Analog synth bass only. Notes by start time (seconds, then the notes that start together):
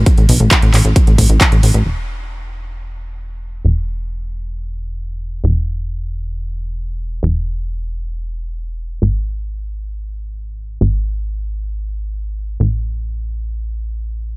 0.18 A1
0.29 B1
0.40 A1
0.62 A1
0.74 A1
0.85 A1
1.07 A1
1.18 A1
1.30 A1
1.52 A1
1.63 A1
1.74 A1
1.85 E1
3.65 E1
5.44 E1
7.23 E1
9.02 G#1
10.81 G#1
12.60 A1